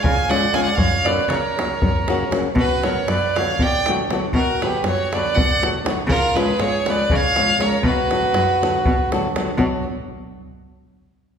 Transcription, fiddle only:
0, 0, Header, 1, 2, 480
1, 0, Start_track
1, 0, Tempo, 505902
1, 739, Time_signature, 7, 3, 24, 8
1, 5295, Tempo, 498753
1, 10880, End_track
2, 0, Start_track
2, 0, Title_t, "Fiddle"
2, 0, Program_c, 0, 110
2, 27, Note_on_c, 0, 80, 106
2, 280, Note_on_c, 0, 78, 107
2, 294, Note_off_c, 0, 80, 0
2, 514, Note_on_c, 0, 80, 105
2, 529, Note_off_c, 0, 78, 0
2, 593, Note_off_c, 0, 80, 0
2, 599, Note_on_c, 0, 78, 94
2, 714, Note_on_c, 0, 77, 110
2, 728, Note_off_c, 0, 78, 0
2, 990, Note_on_c, 0, 74, 94
2, 1004, Note_off_c, 0, 77, 0
2, 1215, Note_on_c, 0, 73, 80
2, 1230, Note_off_c, 0, 74, 0
2, 2192, Note_off_c, 0, 73, 0
2, 2451, Note_on_c, 0, 71, 106
2, 2695, Note_on_c, 0, 73, 89
2, 2709, Note_off_c, 0, 71, 0
2, 2920, Note_on_c, 0, 74, 97
2, 2934, Note_off_c, 0, 73, 0
2, 3189, Note_on_c, 0, 77, 94
2, 3203, Note_off_c, 0, 74, 0
2, 3433, Note_on_c, 0, 79, 111
2, 3447, Note_off_c, 0, 77, 0
2, 3670, Note_off_c, 0, 79, 0
2, 4113, Note_on_c, 0, 70, 97
2, 4389, Note_on_c, 0, 71, 86
2, 4403, Note_off_c, 0, 70, 0
2, 4604, Note_off_c, 0, 71, 0
2, 4615, Note_on_c, 0, 73, 92
2, 4872, Note_on_c, 0, 74, 96
2, 4886, Note_off_c, 0, 73, 0
2, 5069, Note_on_c, 0, 78, 114
2, 5083, Note_off_c, 0, 74, 0
2, 5323, Note_off_c, 0, 78, 0
2, 5785, Note_on_c, 0, 70, 107
2, 6038, Note_on_c, 0, 71, 93
2, 6052, Note_off_c, 0, 70, 0
2, 6280, Note_on_c, 0, 73, 102
2, 6295, Note_off_c, 0, 71, 0
2, 6568, Note_on_c, 0, 74, 105
2, 6582, Note_off_c, 0, 73, 0
2, 6808, Note_on_c, 0, 77, 118
2, 6823, Note_off_c, 0, 74, 0
2, 7257, Note_on_c, 0, 73, 101
2, 7271, Note_off_c, 0, 77, 0
2, 7472, Note_off_c, 0, 73, 0
2, 7480, Note_on_c, 0, 71, 96
2, 8669, Note_off_c, 0, 71, 0
2, 10880, End_track
0, 0, End_of_file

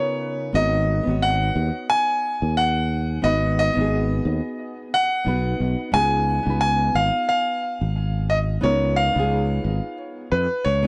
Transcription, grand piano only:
0, 0, Header, 1, 2, 480
1, 0, Start_track
1, 0, Tempo, 674157
1, 385, Time_signature, 4, 2, 24, 8
1, 7739, End_track
2, 0, Start_track
2, 0, Title_t, "Grand piano"
2, 0, Program_c, 0, 0
2, 0, Note_on_c, 0, 73, 84
2, 392, Note_on_c, 0, 75, 102
2, 403, Note_off_c, 0, 73, 0
2, 872, Note_on_c, 0, 78, 98
2, 883, Note_off_c, 0, 75, 0
2, 1320, Note_off_c, 0, 78, 0
2, 1350, Note_on_c, 0, 80, 113
2, 1799, Note_off_c, 0, 80, 0
2, 1831, Note_on_c, 0, 78, 95
2, 2305, Note_on_c, 0, 75, 97
2, 2323, Note_off_c, 0, 78, 0
2, 2545, Note_off_c, 0, 75, 0
2, 2556, Note_on_c, 0, 75, 99
2, 3002, Note_off_c, 0, 75, 0
2, 3517, Note_on_c, 0, 78, 102
2, 4227, Note_on_c, 0, 80, 116
2, 4253, Note_off_c, 0, 78, 0
2, 4694, Note_off_c, 0, 80, 0
2, 4705, Note_on_c, 0, 80, 104
2, 4952, Note_off_c, 0, 80, 0
2, 4952, Note_on_c, 0, 77, 95
2, 5172, Note_off_c, 0, 77, 0
2, 5188, Note_on_c, 0, 77, 101
2, 5907, Note_on_c, 0, 75, 88
2, 5928, Note_off_c, 0, 77, 0
2, 5961, Note_off_c, 0, 75, 0
2, 6148, Note_on_c, 0, 73, 90
2, 6382, Note_on_c, 0, 77, 93
2, 6394, Note_off_c, 0, 73, 0
2, 7075, Note_off_c, 0, 77, 0
2, 7345, Note_on_c, 0, 71, 83
2, 7580, Note_on_c, 0, 73, 86
2, 7592, Note_off_c, 0, 71, 0
2, 7739, Note_off_c, 0, 73, 0
2, 7739, End_track
0, 0, End_of_file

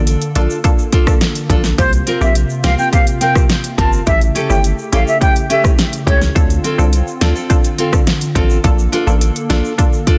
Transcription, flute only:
0, 0, Header, 1, 2, 480
1, 0, Start_track
1, 0, Key_signature, -1, "minor"
1, 0, Tempo, 571429
1, 1500, Time_signature, 4, 2, 24, 8
1, 8551, End_track
2, 0, Start_track
2, 0, Title_t, "Flute"
2, 0, Program_c, 0, 73
2, 1501, Note_on_c, 0, 72, 107
2, 1608, Note_off_c, 0, 72, 0
2, 1862, Note_on_c, 0, 76, 77
2, 1969, Note_off_c, 0, 76, 0
2, 2219, Note_on_c, 0, 77, 85
2, 2327, Note_off_c, 0, 77, 0
2, 2336, Note_on_c, 0, 79, 86
2, 2445, Note_off_c, 0, 79, 0
2, 2459, Note_on_c, 0, 77, 87
2, 2567, Note_off_c, 0, 77, 0
2, 2700, Note_on_c, 0, 79, 80
2, 2807, Note_off_c, 0, 79, 0
2, 3178, Note_on_c, 0, 81, 73
2, 3286, Note_off_c, 0, 81, 0
2, 3420, Note_on_c, 0, 76, 109
2, 3527, Note_off_c, 0, 76, 0
2, 3780, Note_on_c, 0, 79, 81
2, 3887, Note_off_c, 0, 79, 0
2, 4143, Note_on_c, 0, 77, 70
2, 4249, Note_off_c, 0, 77, 0
2, 4263, Note_on_c, 0, 76, 88
2, 4369, Note_off_c, 0, 76, 0
2, 4381, Note_on_c, 0, 79, 97
2, 4488, Note_off_c, 0, 79, 0
2, 4624, Note_on_c, 0, 76, 80
2, 4729, Note_off_c, 0, 76, 0
2, 5102, Note_on_c, 0, 73, 83
2, 5208, Note_off_c, 0, 73, 0
2, 8551, End_track
0, 0, End_of_file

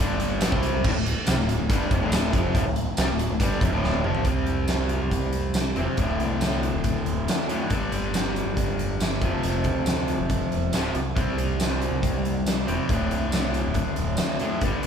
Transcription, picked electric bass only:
0, 0, Header, 1, 2, 480
1, 0, Start_track
1, 0, Tempo, 428266
1, 945, Time_signature, 4, 2, 24, 8
1, 6708, Tempo, 432277
1, 16571, End_track
2, 0, Start_track
2, 0, Title_t, "Picked electric bass"
2, 0, Program_c, 0, 34
2, 0, Note_on_c, 0, 31, 88
2, 547, Note_off_c, 0, 31, 0
2, 591, Note_on_c, 0, 36, 86
2, 923, Note_off_c, 0, 36, 0
2, 945, Note_on_c, 0, 26, 93
2, 1056, Note_off_c, 0, 26, 0
2, 1081, Note_on_c, 0, 26, 82
2, 1296, Note_off_c, 0, 26, 0
2, 1447, Note_on_c, 0, 36, 88
2, 1548, Note_off_c, 0, 36, 0
2, 1565, Note_on_c, 0, 26, 79
2, 1778, Note_off_c, 0, 26, 0
2, 1816, Note_on_c, 0, 26, 87
2, 1898, Note_off_c, 0, 26, 0
2, 1905, Note_on_c, 0, 31, 94
2, 2126, Note_off_c, 0, 31, 0
2, 2145, Note_on_c, 0, 29, 94
2, 2254, Note_off_c, 0, 29, 0
2, 2287, Note_on_c, 0, 26, 89
2, 2608, Note_off_c, 0, 26, 0
2, 2620, Note_on_c, 0, 29, 96
2, 2843, Note_off_c, 0, 29, 0
2, 2858, Note_on_c, 0, 26, 91
2, 2970, Note_off_c, 0, 26, 0
2, 2996, Note_on_c, 0, 26, 84
2, 3211, Note_off_c, 0, 26, 0
2, 3342, Note_on_c, 0, 36, 87
2, 3452, Note_off_c, 0, 36, 0
2, 3465, Note_on_c, 0, 26, 77
2, 3685, Note_off_c, 0, 26, 0
2, 3696, Note_on_c, 0, 26, 78
2, 3803, Note_off_c, 0, 26, 0
2, 3810, Note_on_c, 0, 31, 90
2, 4037, Note_off_c, 0, 31, 0
2, 4055, Note_on_c, 0, 29, 97
2, 4168, Note_off_c, 0, 29, 0
2, 4184, Note_on_c, 0, 26, 86
2, 4516, Note_off_c, 0, 26, 0
2, 4532, Note_on_c, 0, 29, 91
2, 4754, Note_off_c, 0, 29, 0
2, 4761, Note_on_c, 0, 36, 82
2, 4882, Note_off_c, 0, 36, 0
2, 5023, Note_on_c, 0, 36, 69
2, 5585, Note_off_c, 0, 36, 0
2, 5637, Note_on_c, 0, 36, 80
2, 5735, Note_off_c, 0, 36, 0
2, 5742, Note_on_c, 0, 36, 84
2, 6420, Note_off_c, 0, 36, 0
2, 6462, Note_on_c, 0, 28, 90
2, 6577, Note_off_c, 0, 28, 0
2, 6703, Note_on_c, 0, 26, 97
2, 6929, Note_off_c, 0, 26, 0
2, 6944, Note_on_c, 0, 36, 88
2, 7506, Note_off_c, 0, 36, 0
2, 7542, Note_on_c, 0, 26, 93
2, 7655, Note_off_c, 0, 26, 0
2, 7672, Note_on_c, 0, 26, 86
2, 7780, Note_off_c, 0, 26, 0
2, 7891, Note_on_c, 0, 26, 81
2, 8122, Note_off_c, 0, 26, 0
2, 8618, Note_on_c, 0, 31, 85
2, 8732, Note_off_c, 0, 31, 0
2, 8855, Note_on_c, 0, 31, 79
2, 9420, Note_off_c, 0, 31, 0
2, 9448, Note_on_c, 0, 31, 81
2, 9566, Note_off_c, 0, 31, 0
2, 9582, Note_on_c, 0, 31, 88
2, 10257, Note_off_c, 0, 31, 0
2, 10298, Note_on_c, 0, 29, 88
2, 10412, Note_off_c, 0, 29, 0
2, 10540, Note_on_c, 0, 29, 90
2, 10765, Note_off_c, 0, 29, 0
2, 10770, Note_on_c, 0, 38, 83
2, 11338, Note_off_c, 0, 38, 0
2, 11380, Note_on_c, 0, 29, 90
2, 11493, Note_off_c, 0, 29, 0
2, 11499, Note_on_c, 0, 29, 85
2, 11613, Note_off_c, 0, 29, 0
2, 11760, Note_on_c, 0, 28, 74
2, 11967, Note_off_c, 0, 28, 0
2, 11993, Note_on_c, 0, 26, 72
2, 12204, Note_off_c, 0, 26, 0
2, 12220, Note_on_c, 0, 36, 78
2, 12437, Note_off_c, 0, 36, 0
2, 12470, Note_on_c, 0, 36, 79
2, 12578, Note_off_c, 0, 36, 0
2, 12692, Note_on_c, 0, 36, 79
2, 13259, Note_off_c, 0, 36, 0
2, 13294, Note_on_c, 0, 36, 82
2, 13410, Note_off_c, 0, 36, 0
2, 13420, Note_on_c, 0, 36, 83
2, 14097, Note_off_c, 0, 36, 0
2, 14145, Note_on_c, 0, 28, 94
2, 14256, Note_off_c, 0, 28, 0
2, 14381, Note_on_c, 0, 26, 97
2, 14607, Note_off_c, 0, 26, 0
2, 14635, Note_on_c, 0, 36, 84
2, 15192, Note_off_c, 0, 36, 0
2, 15230, Note_on_c, 0, 26, 92
2, 15325, Note_off_c, 0, 26, 0
2, 15332, Note_on_c, 0, 26, 86
2, 15450, Note_off_c, 0, 26, 0
2, 15582, Note_on_c, 0, 26, 82
2, 15808, Note_off_c, 0, 26, 0
2, 16293, Note_on_c, 0, 31, 90
2, 16411, Note_off_c, 0, 31, 0
2, 16571, End_track
0, 0, End_of_file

